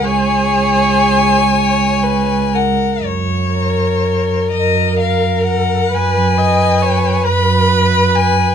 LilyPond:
<<
  \new Staff \with { instrumentName = "Violin" } { \time 6/8 \key fis \major \tempo 4. = 42 gis''2~ gis''8 fis''8 | cis''4. dis''8 eis''8 fis''8 | gis''4. b''4 gis''8 | }
  \new Staff \with { instrumentName = "Viola" } { \time 6/8 \key fis \major cis''2~ cis''16 r8. | r4. ais'4. | b'8 dis''8 cis''8 b'4. | }
  \new Staff \with { instrumentName = "Violin" } { \time 6/8 \key fis \major gis'4. cis''8 b'8 ais'8 | r8 ais'4. ais'4 | b'8 b'4. b'4 | }
  \new Staff \with { instrumentName = "Cello" } { \clef bass \time 6/8 \key fis \major cis,2. | fis,4. fis,4. | fis,4. fis,4. | }
>>